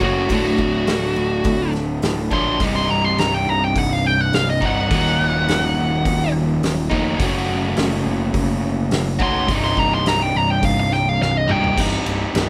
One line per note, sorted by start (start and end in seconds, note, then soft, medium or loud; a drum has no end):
0.00 0.28 F#1 medium
0.00 0.27 F#2 medium
0.00 0.29 F#2 medium
0.00 0.27 C#3 medium
0.00 0.29 C#3 medium
0.00 0.29 F#3 medium
0.00 0.28 A3 medium
0.00 0.28 C#4 medium
0.00 0.27 F#4 medium
0.00 kick medium
0.04 1.71 F#4 medium
0.29 0.57 D1 medium
0.29 0.56 D2 medium
0.29 2.29 D2 medium
0.29 2.30 A2 medium
0.29 0.57 A2 loud
0.29 0.57 D3 loud
0.29 2.30 D3 medium
0.29 2.30 F#3 medium
0.29 2.30 A3 medium
0.29 2.29 D4 medium
0.29 kick loud
0.29 open hi-hat soft
0.58 0.86 D1 medium
0.58 0.84 D2 medium
0.58 0.84 A2 medium
0.58 kick medium
0.87 1.15 D1 medium
0.87 1.13 D2 medium
0.87 1.13 A2 medium
0.87 snare loud
0.87 open hi-hat medium
1.16 1.44 D1 medium
1.16 1.42 D2 medium
1.16 1.42 A2 medium
1.44 2.00 D1 medium
1.44 1.71 D2 medium
1.44 1.72 A2 medium
1.44 1.72 D3 medium
1.44 kick loud
1.44 open hi-hat medium
1.73 1.99 D2 medium
1.73 1.99 A2 medium
1.73 snare soft
2.02 2.30 D1 medium
2.02 2.29 D2 medium
2.02 2.30 A2 medium
2.02 2.30 D3 medium
2.02 snare loud
2.02 open hi-hat medium
2.31 2.59 A#1 medium
2.31 2.57 D2 medium
2.31 2.58 D2 medium
2.31 2.57 A2 medium
2.31 2.59 A2 medium
2.31 2.59 D3 medium
2.31 2.59 F#3 medium
2.31 2.58 A3 medium
2.31 2.58 D4 medium
2.31 2.60 C6 loud
2.31 kick medium
2.59 2.87 C1 medium
2.59 4.59 C2 medium
2.59 4.60 G2 medium
2.59 4.60 C3 medium
2.59 4.61 G3 medium
2.59 4.59 D#4 medium
2.59 kick loud
2.59 open hi-hat medium
2.76 2.90 C6 medium
2.90 3.17 C1 medium
2.90 3.05 A#5 medium
3.05 3.18 C6 medium
3.18 3.45 C1 medium
3.18 3.33 A#5 medium
3.18 snare loud
3.18 open hi-hat medium
3.34 3.47 G5 medium
3.47 3.74 C1 medium
3.47 3.62 A#5 medium
3.64 3.76 G5 medium
3.76 4.30 C1 medium
3.76 3.93 F#5 medium
3.76 kick medium
3.76 open hi-hat medium
3.93 4.07 F5 medium
4.07 4.21 G5 medium
4.21 4.35 F#5 medium
4.33 4.60 C1 medium
4.33 4.48 F5 medium
4.33 snare loud
4.33 open hi-hat medium
4.50 4.65 D#5 medium
4.61 4.89 C1 medium
4.61 4.90 G2 medium
4.61 4.89 C3 medium
4.61 4.89 G3 medium
4.61 4.88 D#4 medium
4.61 kick medium
4.65 4.89 C2 medium
4.65 6.32 F#5 medium
4.90 5.18 D#1 medium
4.90 6.89 D#2 medium
4.90 6.90 A#2 medium
4.90 6.90 D#3 medium
4.90 6.90 F#3 medium
4.90 6.90 A#3 medium
4.90 kick loud
4.90 open hi-hat medium
4.94 6.88 D#4 medium
5.19 5.46 D#1 medium
5.48 5.75 D#1 medium
5.48 snare loud
5.48 open hi-hat medium
5.78 6.04 D#1 medium
6.05 6.60 D#1 medium
6.05 kick loud
6.05 open hi-hat medium
6.62 6.90 D#1 medium
6.62 snare loud
6.62 open hi-hat medium
6.90 7.18 F1 loud
6.90 7.18 D#2 medium
6.90 7.19 A#2 medium
6.90 7.18 D#3 medium
6.90 7.18 F#3 medium
6.90 7.18 A#3 medium
6.90 7.17 D#4 medium
6.90 kick medium
7.19 7.47 F#1 medium
7.19 9.18 F#2 medium
7.19 9.18 C#3 medium
7.19 9.19 F#3 medium
7.19 9.19 A3 medium
7.19 9.19 C#4 medium
7.19 9.17 F#4 medium
7.19 kick loud
7.19 open hi-hat medium
7.49 7.76 F#1 medium
7.77 8.04 F#1 medium
7.77 snare loud
7.77 open hi-hat medium
8.06 8.33 F#1 medium
8.34 8.89 F#1 loud
8.34 kick loud
8.34 open hi-hat medium
8.91 9.19 F#1 medium
8.91 snare loud
8.91 open hi-hat medium
9.19 9.47 B1 medium
9.19 9.47 F#2 medium
9.19 9.48 C#3 medium
9.19 9.48 F#3 medium
9.19 9.47 A3 medium
9.19 9.47 C#4 medium
9.19 9.46 F#4 medium
9.19 9.49 C6 loud
9.19 kick medium
9.47 9.76 C1 loud
9.47 11.46 C2 medium
9.47 11.47 G2 medium
9.47 11.47 C3 medium
9.47 11.48 G3 medium
9.47 kick loud
9.47 open hi-hat medium
9.51 11.46 D#4 loud
9.64 9.79 C6 medium
9.77 10.04 C1 medium
9.77 9.92 A#5 medium
9.77 kick medium
9.94 10.07 C6 loud
10.06 10.34 C1 loud
10.06 10.22 A#5 medium
10.06 snare loud
10.06 open hi-hat medium
10.22 10.36 G5 loud
10.35 10.62 C1 medium
10.35 10.50 A#5 loud
10.50 10.63 G5 medium
10.63 11.17 C1 medium
10.63 10.78 F5 medium
10.63 kick loud
10.63 open hi-hat medium
10.80 10.92 F5 medium
10.93 11.09 G5 medium
10.93 snare soft
11.09 11.21 F5 medium
11.21 11.48 C1 medium
11.21 11.37 F5 medium
11.21 snare medium
11.37 11.50 D#5 medium
11.48 11.76 C1 loud
11.48 11.75 C2 medium
11.48 11.76 G2 medium
11.48 11.76 C3 medium
11.48 11.76 G3 medium
11.48 11.75 D#4 medium
11.48 mid tom medium
11.52 11.78 G5 loud
11.64 floor tom medium
11.76 11.96 C1 loud
11.76 12.49 C2 medium
11.76 12.49 G2 medium
11.76 12.49 C3 medium
11.76 12.49 G3 loud
11.76 12.49 D#4 medium
11.76 kick loud
11.76 crash loud
12.06 12.24 C1 medium
12.06 ride medium
12.34 12.49 C1 loud
12.34 snare loud
12.34 ride loud